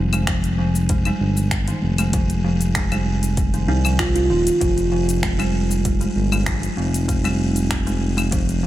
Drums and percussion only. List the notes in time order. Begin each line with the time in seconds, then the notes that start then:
0.13 closed hi-hat, cabasa, claves
0.27 finger snap, kick, closed hi-hat, cabasa
0.44 closed hi-hat, cabasa
0.75 cabasa
0.89 kick, closed hi-hat, cabasa
1.05 closed hi-hat, cabasa, claves
1.37 cabasa
1.51 finger snap, kick, closed hi-hat, cabasa
1.68 closed hi-hat, cabasa
1.98 closed hi-hat, cabasa, claves
2.13 kick, closed hi-hat, cabasa
2.30 closed hi-hat, cabasa
2.61 closed hi-hat, cabasa
2.75 finger snap, kick, closed hi-hat, cabasa
2.92 closed hi-hat, cabasa, claves
3.23 closed hi-hat, cabasa
3.37 kick, closed hi-hat, cabasa
3.54 closed hi-hat, cabasa
3.85 cabasa, claves
3.99 finger snap, kick, closed hi-hat, cabasa
4.16 closed hi-hat, cabasa
4.47 closed hi-hat, cabasa
4.61 kick, closed hi-hat, cabasa
4.78 closed hi-hat, cabasa
5.09 closed hi-hat, cabasa
5.23 finger snap, kick, closed hi-hat, cabasa
5.40 closed hi-hat, cabasa, claves
5.71 cabasa
5.85 kick, closed hi-hat, cabasa
6.01 closed hi-hat, cabasa
6.32 cabasa, claves
6.46 finger snap, kick, closed hi-hat, cabasa
6.63 closed hi-hat, cabasa
6.94 closed hi-hat, cabasa
7.09 kick, closed hi-hat, cabasa
7.25 closed hi-hat, cabasa, claves
7.56 closed hi-hat, cabasa
7.71 finger snap, kick, closed hi-hat, cabasa
7.87 closed hi-hat, cabasa
8.18 closed hi-hat, cabasa, claves
8.32 kick, closed hi-hat, cabasa
8.49 closed hi-hat, cabasa